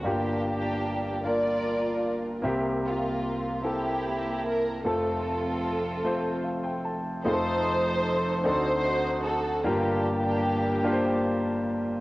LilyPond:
<<
  \new Staff \with { instrumentName = "String section" } { \time 6/8 \key f \mixolydian \tempo 4. = 50 << { g'4. d''4 r8 | r8 f'4 g'4 bes'8 | a'2~ a'8 r8 | c''4. c''4 a'8 |
g'2~ g'8 r8 | } \\ { <bes d'>4. <f' bes'>4. | r8 bes4 <bes e'>4. | <c' f'>2~ <c' f'>8 r8 | <ees' a'>4. <ees' fis'>4. |
<bes d'>2~ <bes d'>8 r8 | } >> }
  \new Staff \with { instrumentName = "Grand piano" } { \time 6/8 \key f \mixolydian << { r2. | r2. | r2 f''16 g''16 a''8 | r2. |
r2. | } \\ { <bes d' f' g'>4 r8 <bes d' f' bes'>4 r8 | <bes c' g' e''>4 r8 <bes c' e' a'>4 r8 | <a c' f' a'>4 r8 <a c' f' c''>4 r8 | <a c' ees' f' aes' a'>4 r8 <c' ees' fis' a' d''>4 r8 |
<bes d' f' g' bes'>4 r8 <bes d' f' g' bes' c''>4 r8 | } >> }
  \new Staff \with { instrumentName = "Grand piano" } { \clef bass \time 6/8 \key f \mixolydian <g,, g,>2. | <c, c>2. | <f,, f,>2. | <f,, f,>4. <d, d>4. |
<g,, g,>2. | }
>>